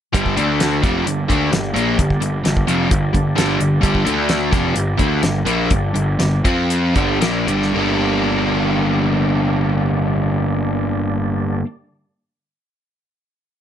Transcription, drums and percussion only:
0.14 kick loud
0.14 closed hi-hat medium
0.26 kick medium
0.37 closed hi-hat medium
0.60 snare medium
0.60 closed hi-hat medium
0.84 kick loud
0.84 snare soft
0.84 closed hi-hat medium
1.07 closed hi-hat medium
1.30 kick medium
1.30 closed hi-hat medium
1.53 snare loud
1.53 closed hi-hat loud
1.76 closed hi-hat medium
1.99 kick loud
1.99 closed hi-hat medium
2.10 kick medium
2.22 closed hi-hat medium
2.45 snare loud
2.45 closed hi-hat medium
2.57 kick medium
2.68 closed hi-hat medium
2.91 kick loud
2.91 closed hi-hat medium
3.14 kick medium
3.14 closed hi-hat medium
3.38 snare loud
3.38 closed hi-hat loud
3.60 closed hi-hat medium
3.83 kick loud
3.83 closed hi-hat medium
3.95 kick medium
4.07 closed hi-hat medium
4.29 snare loud
4.29 closed hi-hat medium
4.53 kick loud
4.53 snare soft
4.53 closed hi-hat medium
4.76 closed hi-hat loud
4.99 kick medium
4.99 closed hi-hat medium
5.23 snare loud
5.23 closed hi-hat loud
5.47 closed hi-hat medium
5.71 kick loud
5.71 closed hi-hat medium
5.96 closed hi-hat medium
6.20 snare loud
6.20 closed hi-hat medium
6.45 kick loud
6.45 closed hi-hat medium
6.70 closed hi-hat medium
6.96 kick medium
6.96 closed hi-hat medium
7.22 snare loud
7.22 closed hi-hat medium
7.48 closed hi-hat medium
7.62 snare soft

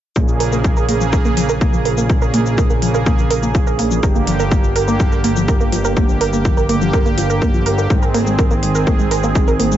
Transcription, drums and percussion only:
0.16 kick loud
0.16 shaker medium
0.28 shaker soft
0.40 open hi-hat medium
0.53 shaker medium
0.64 kick loud
0.64 shaker medium
0.77 shaker soft
0.89 open hi-hat medium
1.01 shaker medium
1.13 kick loud
1.13 shaker medium
1.25 shaker soft
1.37 open hi-hat medium
1.49 shaker medium
1.61 kick loud
1.61 shaker medium
1.74 shaker soft
1.85 open hi-hat medium
1.98 shaker medium
2.10 kick loud
2.10 shaker medium
2.22 shaker soft
2.34 open hi-hat loud
2.46 shaker medium
2.58 kick loud
2.58 shaker soft
2.70 shaker soft
2.82 open hi-hat medium
2.94 shaker medium
3.06 kick loud
3.06 shaker soft
3.19 shaker soft
3.31 open hi-hat loud
3.43 shaker medium
3.55 kick loud
3.55 shaker medium
3.67 shaker soft
3.79 open hi-hat medium
3.91 shaker medium
4.03 kick loud
4.03 shaker soft
4.15 shaker soft
4.27 open hi-hat loud
4.40 shaker medium
4.51 kick loud
4.51 shaker soft
4.64 shaker soft
4.76 open hi-hat medium
4.88 shaker medium
5.00 kick loud
5.00 shaker soft
5.12 shaker soft
5.24 open hi-hat loud
5.36 shaker medium
5.48 kick loud
5.48 shaker soft
5.61 shaker soft
5.72 open hi-hat medium
5.85 shaker medium
5.97 kick loud
5.97 shaker soft
6.09 shaker soft
6.21 open hi-hat loud
6.33 shaker medium
6.45 kick loud
6.45 shaker soft
6.57 shaker soft
6.69 open hi-hat medium
6.82 shaker medium
6.93 kick loud
6.93 shaker soft
7.06 shaker soft
7.18 open hi-hat loud
7.30 shaker medium
7.42 kick loud
7.42 shaker soft
7.54 shaker soft
7.66 open hi-hat medium
7.78 shaker medium
7.90 kick loud
7.90 shaker medium
8.03 shaker soft
8.14 open hi-hat loud
8.27 shaker medium
8.39 kick loud
8.39 shaker soft
8.51 shaker soft
8.63 open hi-hat medium
8.75 shaker medium
8.87 kick loud
8.87 shaker soft
8.99 shaker soft
9.11 open hi-hat medium
9.23 shaker medium
9.35 kick loud
9.35 shaker soft
9.48 shaker soft
9.60 open hi-hat medium
9.72 shaker medium

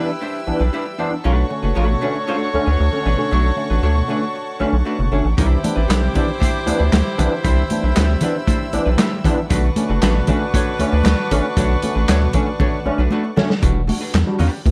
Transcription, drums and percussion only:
5.38 kick loud
5.38 closed hi-hat loud
5.64 closed hi-hat medium
5.64 high conga medium
5.90 snare loud
5.90 clap loud
5.90 closed hi-hat loud
5.90 muted conga soft
6.15 kick medium
6.15 closed hi-hat medium
6.15 low conga medium
6.42 kick medium
6.42 closed hi-hat medium
6.42 high conga medium
6.67 closed hi-hat medium
6.67 muted conga soft
6.67 high conga medium
6.92 snare loud
6.92 clap medium
6.92 closed hi-hat medium
6.92 high conga medium
7.19 closed hi-hat medium
7.19 muted conga soft
7.19 low conga loud
7.45 kick loud
7.45 closed hi-hat loud
7.70 closed hi-hat medium
7.70 high conga medium
7.96 snare loud
7.96 clap medium
7.96 closed hi-hat loud
8.21 closed hi-hat medium
8.21 low conga medium
8.48 kick medium
8.48 closed hi-hat medium
8.48 muted conga soft
8.48 high conga medium
8.73 closed hi-hat medium
8.73 high conga medium
8.98 snare loud
8.98 clap medium
8.98 closed hi-hat medium
8.98 high conga medium
9.24 kick medium
9.24 closed hi-hat medium
9.24 muted conga soft
9.24 low conga loud
9.50 kick loud
9.50 closed hi-hat loud
9.50 muted conga soft
9.76 closed hi-hat medium
9.76 muted conga soft
9.76 high conga medium
10.02 snare loud
10.02 clap medium
10.02 closed hi-hat medium
10.02 muted conga soft
10.27 kick medium
10.27 closed hi-hat medium
10.27 low conga medium
10.54 kick medium
10.54 closed hi-hat medium
10.54 muted conga soft
10.54 high conga medium
10.79 closed hi-hat medium
10.79 muted conga soft
10.79 high conga medium
11.04 snare loud
11.04 clap medium
11.04 closed hi-hat medium
11.04 muted conga soft
11.04 high conga medium
11.31 closed hi-hat medium
11.31 muted conga soft
11.31 low conga loud
11.57 kick loud
11.57 closed hi-hat medium
11.57 muted conga soft
11.82 closed hi-hat medium
11.82 high conga medium
12.08 snare loud
12.08 clap loud
12.08 closed hi-hat loud
12.33 kick medium
12.33 closed hi-hat medium
12.33 low conga medium
12.60 kick loud
12.60 muted conga soft
12.60 high conga medium
12.60 low conga medium
12.86 high conga medium
13.11 muted conga soft
13.11 high conga medium
13.37 snare medium
13.37 low conga loud
13.50 snare medium
13.63 kick loud
13.63 closed hi-hat loud
13.63 muted conga soft
13.89 open hi-hat medium
13.89 muted conga soft
13.89 high conga medium
14.14 snare loud
14.14 clap medium
14.14 closed hi-hat loud
14.14 muted conga soft
14.39 open hi-hat medium
14.39 muted conga soft
14.39 low conga medium
14.66 kick medium
14.66 closed hi-hat medium
14.66 high conga medium

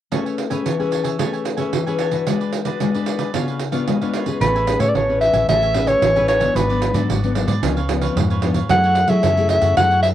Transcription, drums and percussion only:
0.12 pandeiro medium
0.26 pandeiro soft
0.38 pandeiro soft
0.51 pandeiro soft
0.66 pandeiro medium
0.80 pandeiro soft
0.92 pandeiro soft
1.04 pandeiro soft
1.19 pandeiro medium
1.34 pandeiro soft
1.45 pandeiro medium
1.58 pandeiro soft
1.73 pandeiro medium
1.87 pandeiro soft
1.99 pandeiro medium
2.11 pandeiro soft
2.27 pandeiro medium
2.41 pandeiro soft
2.53 pandeiro medium
2.65 pandeiro soft
2.80 pandeiro medium
2.95 pandeiro soft
3.06 pandeiro medium
3.19 pandeiro soft
3.34 pandeiro medium
3.48 pandeiro soft
3.60 pandeiro medium
3.72 pandeiro soft
3.88 pandeiro medium
4.02 pandeiro soft
4.14 pandeiro medium
4.26 pandeiro soft
4.41 pandeiro medium
4.56 pandeiro soft
4.67 pandeiro medium
4.80 pandeiro medium
4.95 pandeiro medium
5.09 pandeiro soft
5.21 pandeiro medium
5.33 pandeiro soft
5.49 pandeiro medium
5.62 pandeiro soft
5.74 pandeiro medium
5.87 pandeiro soft
6.02 pandeiro medium
6.16 pandeiro soft
6.28 pandeiro medium
6.41 pandeiro soft
6.56 pandeiro medium
6.70 pandeiro soft
6.82 pandeiro medium
6.94 pandeiro medium
7.10 pandeiro medium
7.24 pandeiro soft
7.35 pandeiro medium
7.48 pandeiro medium
7.63 pandeiro medium
7.77 pandeiro soft
7.89 pandeiro medium
8.02 pandeiro soft
8.17 pandeiro medium
8.30 pandeiro soft
8.42 pandeiro medium
8.54 pandeiro soft
8.69 pandeiro medium
8.84 pandeiro soft
8.95 pandeiro medium
9.08 pandeiro medium
9.23 pandeiro medium
9.37 pandeiro soft
9.49 pandeiro medium
9.61 pandeiro soft
9.77 pandeiro medium
9.91 pandeiro soft
10.03 pandeiro medium

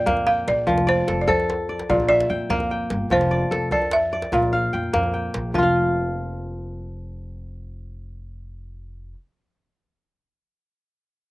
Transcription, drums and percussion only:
0.07 djembe slap medium
0.07 djembe bass medium
0.17 djembe tone medium
0.27 djembe slap soft
0.48 djembe slap medium
0.68 djembe bass medium
0.78 djembe slap medium
0.78 djembe tone medium
0.99 djembe slap soft
1.08 djembe slap medium
1.29 djembe bass medium
1.40 djembe tone medium
1.50 djembe slap medium
1.79 djembe slap medium
1.90 djembe bass medium
2.00 djembe tone medium
2.20 djembe slap medium
2.50 djembe slap medium
2.50 djembe bass medium
2.60 djembe slap soft
2.60 djembe tone medium
2.70 djembe slap soft
2.90 djembe slap medium
3.10 djembe slap soft
3.10 djembe bass medium
3.21 djembe slap medium
3.21 djembe tone soft
3.52 djembe slap medium
3.62 djembe slap soft
3.71 djembe bass medium
3.82 djembe tone medium
3.91 djembe slap medium
4.02 djembe slap soft
4.12 djembe slap soft
4.22 djembe slap medium
4.32 djembe slap soft
4.32 djembe bass medium
4.42 djembe tone medium
4.73 djembe slap soft
4.83 djembe slap soft
4.94 djembe slap medium
4.94 djembe bass medium
5.03 djembe tone medium
5.34 djembe slap medium
5.54 djembe bass medium

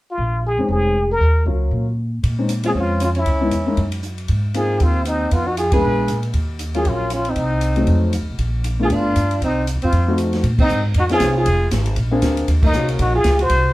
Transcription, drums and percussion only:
2.23 kick soft
2.23 ride medium
2.49 hi-hat pedal medium
2.49 ride medium
2.63 ride medium
2.75 kick soft
3.00 hi-hat pedal soft
3.00 ride medium
3.15 ride soft
3.26 kick soft
3.26 ride medium
3.51 hi-hat pedal soft
3.51 ride medium
3.77 kick soft
3.77 ride soft
3.92 ride medium
4.03 hi-hat pedal soft
4.18 ride soft
4.28 kick soft
4.28 ride soft
4.54 hi-hat pedal soft
4.54 ride medium
4.80 kick soft
4.80 ride soft
5.05 hi-hat pedal medium
5.05 ride medium
5.31 kick soft
5.31 ride medium
5.57 hi-hat pedal soft
5.57 ride medium
5.72 kick medium
5.72 ride medium
6.08 hi-hat pedal medium
6.08 ride soft
6.23 ride soft
6.33 kick soft
6.33 ride soft
6.59 hi-hat pedal soft
6.59 ride medium
6.74 ride soft
6.85 kick soft
6.85 ride soft
7.10 hi-hat pedal medium
7.10 ride medium
7.25 ride soft
7.36 kick soft
7.36 ride soft
7.61 hi-hat pedal soft
7.61 ride medium
7.76 ride soft
7.87 kick soft
7.87 ride soft
8.13 hi-hat pedal soft
8.13 ride medium
8.39 kick soft
8.39 ride medium
8.64 hi-hat pedal soft
8.64 ride soft
8.90 kick soft
8.90 ride soft
9.16 hi-hat pedal soft
9.16 ride medium
9.31 ride soft
9.42 kick soft
9.42 ride soft
9.67 hi-hat pedal soft
9.67 ride medium
9.82 ride soft
9.92 kick soft
9.92 ride soft
10.18 hi-hat pedal soft
10.18 ride soft
10.33 snare soft
10.33 ride soft
10.44 kick soft
10.44 ride medium
10.58 kick medium
10.58 crash medium
10.69 hi-hat pedal medium
10.94 kick soft
10.94 ride medium
11.09 snare soft
11.09 ride soft
11.20 kick soft
11.20 snare medium
11.20 hi-hat pedal soft
11.20 ride medium
11.46 kick soft
11.46 ride medium
11.71 kick soft
11.71 snare medium
11.71 hi-hat pedal medium
11.71 ride medium
11.86 ride soft
11.96 kick soft
11.96 ride medium
12.22 kick soft
12.22 snare medium
12.22 hi-hat pedal medium
12.22 ride medium
12.37 ride soft
12.48 kick soft
12.48 ride medium
12.63 kick medium
12.63 crash medium
12.73 hi-hat pedal soft
12.88 ride soft
12.99 kick soft
12.99 ride medium
13.24 kick soft
13.24 snare medium
13.24 hi-hat pedal soft
13.24 ride medium
13.39 ride soft
13.49 kick soft
13.49 ride medium

